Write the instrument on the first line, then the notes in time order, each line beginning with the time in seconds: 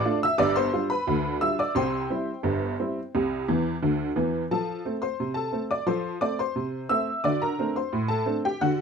honky-tonk piano
Already playing: D5 A5 D6
0.05 A3 D4 F4
0.23 E5 E6
0.38 G1 G2 D5 D6
0.56 C5 C6
0.73 G3 D4 F4
0.90 B4 B5
1.07 D2 D3
1.41 G3 D4 F4 E5 E6
1.59 D5 D6
1.75 C2 C3 C5 G5 C6
2.10 G3 C4 E4
2.43 G1 G2
2.79 G3 C4 E4
3.15 C2 C3
3.48 E2 E3
3.82 D2 D3
4.16 E2 E3
4.51 F3 A4 A5
4.85 A3 C4
5.02 C5 C6
5.20 C3
5.34 A4 A5
5.53 A3 C4
5.71 D5 D6
5.87 F3 A4 C5 C6
6.21 A3 C4 D5 D6
6.39 C5 C6
6.56 C3
6.89 A3 C4 E5 E6
7.24 D3 F#4 D5 D6
7.42 A#4 A#5
7.59 A3 C4 D4
7.76 C5 C6
7.93 A2
8.08 A4 A5
8.26 A3 C4 D4
8.45 G4 G5
8.61 D3 F#4 F#5